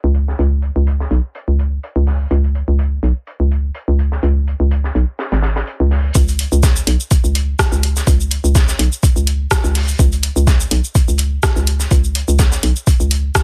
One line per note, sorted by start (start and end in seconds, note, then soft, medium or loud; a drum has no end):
0.04 0.34 C#2 medium
0.14 closed hi-hat medium
0.28 snare medium
0.39 0.71 C#2 medium
0.39 closed hi-hat medium
0.62 closed hi-hat medium
0.76 1.06 C#2 medium
0.87 closed hi-hat medium
1.00 snare medium
1.11 1.21 B1 medium
1.11 closed hi-hat medium
1.35 closed hi-hat medium
1.48 1.78 C#2 medium
1.59 closed hi-hat medium
1.83 closed hi-hat medium
1.96 2.26 C#2 medium
2.07 snare soft
2.07 open hi-hat medium
2.31 2.63 C#2 medium
2.31 closed hi-hat medium
2.44 closed hi-hat soft
2.55 closed hi-hat medium
2.68 2.98 C#2 medium
2.79 closed hi-hat medium
3.03 3.13 B1 medium
3.03 closed hi-hat medium
3.27 closed hi-hat medium
3.40 3.70 C#2 medium
3.51 closed hi-hat medium
3.75 closed hi-hat medium
3.88 4.19 C#2 medium
3.99 closed hi-hat medium
4.12 snare soft
4.23 4.55 C#2 medium
4.23 closed hi-hat medium
4.47 closed hi-hat medium
4.60 4.90 C#2 medium
4.71 closed hi-hat medium
4.84 snare soft
4.95 5.05 B1 medium
4.95 closed hi-hat medium
5.19 snare loud
5.19 closed hi-hat medium
5.32 5.62 G#1 medium
5.32 snare medium
5.32 closed hi-hat medium
5.42 snare loud
5.42 closed hi-hat medium
5.56 snare loud
5.56 closed hi-hat medium
5.67 closed hi-hat medium
5.80 6.11 C#2 loud
5.91 snare soft
5.91 open hi-hat medium
6.15 6.47 C#2 loud
6.15 kick loud
6.15 closed hi-hat medium
6.15 cabasa medium
6.28 closed hi-hat soft
6.28 cabasa soft
6.39 closed hi-hat medium
6.52 6.83 C#2 medium
6.52 cabasa soft
6.63 kick loud
6.63 snare loud
6.63 closed hi-hat medium
6.63 cabasa medium
6.76 cabasa soft
6.87 6.97 B1 loud
6.87 closed hi-hat medium
7.00 cabasa soft
7.11 kick loud
7.11 closed hi-hat medium
7.11 cabasa medium
7.24 7.55 C#2 medium
7.24 cabasa soft
7.35 closed hi-hat medium
7.59 kick loud
7.59 cross-stick loud
7.59 snare loud
7.59 closed hi-hat medium
7.59 cabasa medium
7.72 8.02 C#2 medium
7.72 cabasa soft
7.83 closed hi-hat medium
7.96 snare medium
7.96 cabasa soft
8.07 8.39 C#2 loud
8.07 kick loud
8.07 closed hi-hat medium
8.07 cabasa medium
8.20 cabasa soft
8.31 closed hi-hat medium
8.31 closed hi-hat loud
8.44 8.74 C#2 medium
8.44 cabasa soft
8.55 kick loud
8.55 snare loud
8.55 closed hi-hat medium
8.55 cabasa medium
8.68 snare medium
8.68 cabasa soft
8.79 8.89 B1 loud
8.79 closed hi-hat medium
8.92 cabasa soft
9.03 kick loud
9.03 closed hi-hat medium
9.03 cabasa medium
9.16 9.47 C#2 medium
9.16 cabasa soft
9.27 closed hi-hat medium
9.51 kick loud
9.51 cross-stick loud
9.51 snare loud
9.51 closed hi-hat medium
9.51 cabasa medium
9.64 9.95 C#2 medium
9.64 cabasa soft
9.75 snare soft
9.75 closed hi-hat medium
9.75 open hi-hat medium
9.88 cabasa soft
9.99 10.31 C#2 loud
9.99 kick loud
9.99 closed hi-hat loud
9.99 cabasa medium
10.12 closed hi-hat soft
10.12 cabasa soft
10.23 closed hi-hat medium
10.23 closed hi-hat loud
10.36 10.67 C#2 medium
10.36 cabasa soft
10.47 kick loud
10.47 snare loud
10.47 closed hi-hat medium
10.47 cabasa medium
10.60 cabasa soft
10.71 10.81 B1 loud
10.71 closed hi-hat loud
10.71 closed hi-hat medium
10.84 cabasa soft
10.95 kick loud
10.95 closed hi-hat medium
10.95 cabasa medium
11.08 11.39 C#2 medium
11.08 cabasa soft
11.18 closed hi-hat medium
11.18 closed hi-hat loud
11.43 kick loud
11.43 cross-stick loud
11.43 snare loud
11.43 closed hi-hat medium
11.43 cabasa medium
11.56 11.87 C#2 medium
11.56 cabasa soft
11.67 closed hi-hat medium
11.80 snare soft
11.80 cabasa soft
11.91 12.23 C#2 loud
11.91 kick loud
11.91 closed hi-hat medium
11.91 cabasa medium
12.04 cabasa soft
12.15 closed hi-hat loud
12.15 closed hi-hat medium
12.28 12.59 C#2 medium
12.28 cabasa soft
12.39 kick loud
12.39 snare loud
12.39 closed hi-hat medium
12.39 cabasa medium
12.52 snare medium
12.52 cabasa soft
12.63 12.73 B1 loud
12.63 closed hi-hat medium
12.76 cabasa soft
12.87 kick loud
12.87 closed hi-hat medium
12.87 cabasa medium
13.00 13.31 C#2 medium
13.00 cabasa soft
13.11 closed hi-hat medium
13.35 kick loud
13.35 cross-stick loud
13.35 snare loud
13.35 closed hi-hat medium
13.35 cabasa medium